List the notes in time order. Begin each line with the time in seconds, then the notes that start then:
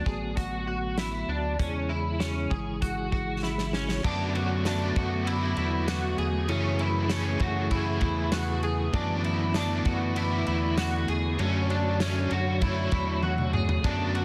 Already playing: D3 F#3 A3 B3 F#4
0.06 A1 G#4, kick
0.37 F#4, kick, closed hi-hat
0.67 F#4
0.98 E4, snare, closed hi-hat
1.28 D2 D4
1.59 E2 C#3 E3 G#3 C#4 E4 G#4, kick, closed hi-hat
1.89 E4
2.20 C#4, snare, closed hi-hat
2.50 G#1 G#4, kick
2.82 F#4, kick, closed hi-hat
3.12 F#4, kick
3.43 E4, snare
3.58 snare
3.73 C#4, snare
3.89 snare
4.03 F#2 D3 F#3 A3 B3 D4 F#4 D5, kick, crash
4.35 F#4, ride
4.64 A3 B3 D4 F#4 D5, snare, ride, tambourine
4.96 F#2 F#4, kick, ride
5.25 A3 B3 E4, ride
5.30 F#4 D5
5.57 E2 E4, ride
5.88 F#4, snare, ride, tambourine
6.18 E2 G#4, ride
6.47 F#2 C#3 E3 F#3 A3 C#4 E4 G#4 C#5, ride
6.79 E4, ride
7.09 E3 A3 C#4 G#4 C#5, snare, ride, tambourine
7.39 F#2 F#4, kick, ride
7.70 E3 A3 E4, kick, ride
7.75 G#4 C#5
8.01 E2 E4, kick, ride
8.32 F#4, snare, ride, tambourine
8.63 G#4, ride
8.93 F#2 D3 E3 A3 B3 D4 E4 F#4 D5, kick, ride
9.24 E4, ride
9.54 A3 B3 D4 F#4 D5, snare, ride, tambourine
9.85 F#2 F#4, kick, ride
10.15 A3 B3 E4, ride
10.20 F#4 D5
10.47 E2 E4, ride
10.78 F#4, snare, ride, tambourine
11.08 E2 G#4, ride
11.38 F#2 F#3 A3 C#4 D4 F#4 A4 C#5, ride
11.70 D4, ride
11.99 A3 C#4 D4 A4 C#5, snare, ride, tambourine
12.31 F#2 F#4, ride
12.60 A3 D4 E4, kick, ride
12.66 A4 C#5
12.92 E2 E4, kick, ride
13.23 F#4, high tom
13.38 mid tom
13.53 G#4, mid tom
13.69 floor tom
13.83 F#2 D3 F#3 A3 B3 D4 F#4 D5, kick, ride
14.15 F#4, ride